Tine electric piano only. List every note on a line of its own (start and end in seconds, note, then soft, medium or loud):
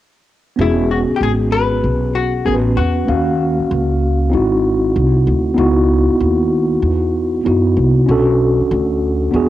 0.56 2.41 B3 medium
0.56 2.42 C#4 medium
0.56 2.43 F#4 medium
0.61 2.43 G#4 medium
2.45 3.08 B3 soft
2.45 3.06 C#4 soft
2.45 3.09 F#4 soft
2.45 2.55 A#4 soft
2.54 3.12 B4 medium
3.06 4.29 A#3 medium
3.06 4.30 C#4 medium
3.06 4.31 F5 medium
3.10 4.32 F#4 medium
4.30 5.54 C4 medium
4.30 5.55 D#4 medium
4.30 5.56 E4 medium
4.35 5.57 F#4 medium
5.54 7.40 B3 medium
5.54 7.41 D#4 medium
5.54 7.42 E4 medium
5.59 7.43 F#4 medium
7.44 8.07 B3 medium
7.44 8.08 D#4 medium
7.44 8.08 E4 medium
7.44 8.08 F#4 medium
8.06 9.30 C#4 medium
8.06 9.31 D4 medium
8.06 9.31 F#4 medium
8.11 9.32 A4 medium
9.31 9.49 B3 medium
9.31 9.49 D4 medium
9.31 9.49 F#4 medium
9.36 9.49 G#4 medium